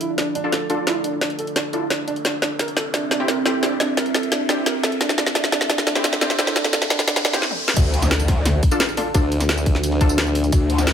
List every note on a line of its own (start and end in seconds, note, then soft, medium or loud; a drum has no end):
0.00 2.21 D4 medium
0.00 0.09 E4 medium
0.00 2.21 F4 medium
0.00 2.21 A4 medium
0.00 2.21 F5 medium
0.00 closed hi-hat medium
0.00 riser medium
0.18 0.26 D4 medium
0.18 snare medium
0.18 closed hi-hat medium
0.35 0.40 D4 loud
0.35 closed hi-hat medium
0.44 0.52 D4 medium
0.44 0.52 F4 medium
0.44 0.52 A4 medium
0.52 0.57 A4 medium
0.52 snare medium
0.52 closed hi-hat medium
0.70 0.75 D4 medium
0.70 0.82 D4 medium
0.70 0.82 F4 medium
0.70 0.82 A4 loud
0.70 closed hi-hat medium
0.87 0.95 D4 medium
0.87 0.95 E4 medium
0.87 0.95 F4 medium
0.87 0.95 A4 medium
0.87 snare medium
0.87 closed hi-hat medium
1.04 1.12 D4 medium
1.04 closed hi-hat medium
1.21 1.26 D4 loud
1.21 snare medium
1.21 closed hi-hat medium
1.30 closed hi-hat soft
1.39 1.44 A4 medium
1.39 closed hi-hat medium
1.47 closed hi-hat soft
1.56 1.61 D4 medium
1.56 snare medium
1.56 closed hi-hat medium
1.73 1.86 D4 medium
1.73 1.81 E4 medium
1.73 1.86 F4 medium
1.73 1.86 A4 medium
1.73 closed hi-hat medium
1.90 1.98 D4 medium
1.90 snare medium
1.90 closed hi-hat medium
2.08 2.12 D4 loud
2.08 closed hi-hat medium
2.16 closed hi-hat soft
2.25 7.38 C4 medium
2.25 2.33 D4 medium
2.25 7.38 E4 medium
2.25 4.98 G4 medium
2.25 7.38 E5 medium
2.25 snare medium
2.25 closed hi-hat medium
2.42 2.47 D4 loud
2.42 snare medium
2.42 closed hi-hat medium
2.59 2.64 A#4 medium
2.59 snare medium
2.59 closed hi-hat medium
2.68 closed hi-hat soft
2.77 2.81 A4 medium
2.77 snare medium
2.77 closed hi-hat medium
2.94 3.02 D4 medium
2.94 snare medium
2.94 closed hi-hat medium
3.11 3.16 D4 medium
3.11 snare medium
3.11 closed hi-hat medium
3.20 3.28 C4 medium
3.20 3.28 E4 medium
3.20 3.28 G4 medium
3.28 3.33 A#4 medium
3.28 snare medium
3.28 closed hi-hat medium
3.45 3.58 C4 medium
3.45 3.58 E4 medium
3.45 3.58 G4 loud
3.45 3.50 A4 medium
3.45 snare medium
3.45 closed hi-hat medium
3.63 3.71 C4 medium
3.63 3.71 D4 medium
3.63 3.71 E4 medium
3.63 3.71 G4 medium
3.63 snare medium
3.63 closed hi-hat medium
3.80 3.85 D4 loud
3.80 snare medium
3.80 closed hi-hat medium
3.97 4.02 A#4 medium
3.97 snare medium
3.97 closed hi-hat medium
4.06 closed hi-hat soft
4.14 4.19 A4 medium
4.14 snare medium
4.14 closed hi-hat medium
4.23 closed hi-hat soft
4.32 4.40 D4 medium
4.32 snare medium
4.32 closed hi-hat medium
4.49 4.62 C4 medium
4.49 4.54 D4 loud
4.49 4.62 E4 medium
4.49 4.62 G4 medium
4.49 snare medium
4.49 closed hi-hat medium
4.66 4.71 A#4 medium
4.66 snare medium
4.66 closed hi-hat medium
4.83 4.88 A4 medium
4.83 snare medium
4.83 closed hi-hat medium
4.92 closed hi-hat soft
5.01 5.09 D4 medium
5.01 7.40 A4 medium
5.01 snare medium
5.01 closed hi-hat loud
5.09 snare medium
5.18 5.23 D4 loud
5.18 snare medium
5.18 closed hi-hat medium
5.27 snare medium
5.35 5.43 D4 medium
5.35 snare medium
5.35 closed hi-hat loud
5.44 snare medium
5.44 closed hi-hat soft
5.52 5.57 D4 loud
5.52 snare loud
5.52 closed hi-hat medium
5.61 snare medium
5.70 5.78 D4 medium
5.70 snare medium
5.70 closed hi-hat loud
5.78 snare medium
5.87 5.92 D4 loud
5.87 snare loud
5.87 closed hi-hat medium
5.95 6.04 C4 medium
5.95 6.04 E4 medium
5.95 6.04 G4 loud
5.95 snare medium
6.04 6.12 D4 medium
6.04 snare loud
6.04 closed hi-hat loud
6.13 snare medium
6.21 6.34 C4 medium
6.21 6.26 D4 loud
6.21 6.34 E4 medium
6.21 6.34 G4 loud
6.21 snare loud
6.21 closed hi-hat medium
6.30 snare medium
6.39 6.47 C4 medium
6.39 6.47 D4 medium
6.39 6.47 E4 medium
6.39 6.47 G4 medium
6.39 snare loud
6.39 closed hi-hat loud
6.47 snare medium
6.56 6.64 D4 medium
6.56 snare loud
6.56 closed hi-hat medium
6.64 snare medium
6.64 closed hi-hat soft
6.73 6.81 D4 medium
6.73 snare loud
6.73 closed hi-hat loud
6.82 snare medium
6.82 closed hi-hat soft
6.90 6.98 D4 medium
6.90 snare loud
6.90 closed hi-hat medium
6.99 snare medium
6.99 closed hi-hat soft
7.08 7.16 D4 medium
7.08 snare loud
7.08 closed hi-hat loud
7.16 snare loud
7.25 7.33 D4 medium
7.25 snare loud
7.25 closed hi-hat medium
7.33 7.42 C4 medium
7.33 7.42 E4 medium
7.33 7.42 G4 medium
7.33 snare medium
7.42 snare medium
7.51 high tom medium
7.68 snare medium
7.77 8.61 D2 loud
7.77 10.93 A3 medium
7.77 10.93 D4 medium
7.77 10.93 F4 medium
7.77 10.93 D5 medium
7.77 kick loud
7.77 closed hi-hat loud
7.77 crash loud
7.77 ride medium
7.77 tambourine soft
7.77 impact medium
7.94 closed hi-hat medium
7.94 ride medium
8.02 snare soft
8.02 tambourine medium
8.11 snare loud
8.11 closed hi-hat loud
8.11 ride medium
8.20 closed hi-hat soft
8.20 tambourine soft
8.28 kick loud
8.28 snare soft
8.28 closed hi-hat medium
8.28 ride medium
8.46 snare medium
8.46 closed hi-hat loud
8.46 ride medium
8.46 tambourine medium
8.63 kick loud
8.63 closed hi-hat medium
8.63 ride medium
8.63 tambourine soft
8.71 8.79 D4 medium
8.71 8.79 F4 medium
8.71 8.79 A4 loud
8.71 tambourine medium
8.80 snare loud
8.80 closed hi-hat loud
8.80 ride medium
8.80 tambourine medium
8.89 tambourine soft
8.97 9.10 D4 medium
8.97 9.10 F4 medium
8.97 9.10 A4 loud
8.97 snare soft
8.97 open hi-hat medium
8.97 ride medium
9.14 10.51 D2 loud
9.14 9.22 D4 medium
9.14 9.22 F4 medium
9.14 9.22 A4 medium
9.14 kick loud
9.14 closed hi-hat medium
9.14 ride medium
9.14 tambourine soft
9.32 closed hi-hat medium
9.32 ride medium
9.40 snare soft
9.40 closed hi-hat soft
9.40 tambourine medium
9.49 snare loud
9.49 closed hi-hat medium
9.49 ride medium
9.58 closed hi-hat soft
9.58 tambourine soft
9.66 kick loud
9.66 closed hi-hat medium
9.66 ride medium
9.75 snare soft
9.83 closed hi-hat medium
9.83 ride medium
9.83 tambourine soft
9.92 snare medium
10.01 10.13 D4 medium
10.01 10.13 F4 medium
10.01 10.13 A4 medium
10.01 kick loud
10.01 closed hi-hat medium
10.01 ride medium
10.01 tambourine soft
10.09 tambourine medium
10.18 snare loud
10.18 closed hi-hat medium
10.18 ride medium
10.18 tambourine soft
10.27 tambourine soft
10.35 snare soft
10.35 open hi-hat medium
10.35 ride medium
10.44 closed hi-hat soft
10.44 tambourine soft
10.52 10.93 D2 loud
10.52 kick loud
10.52 closed hi-hat medium
10.52 ride medium
10.52 tambourine soft
10.70 closed hi-hat medium
10.70 ride medium
10.78 snare soft
10.78 tambourine medium
10.87 snare loud
10.87 closed hi-hat medium
10.87 ride medium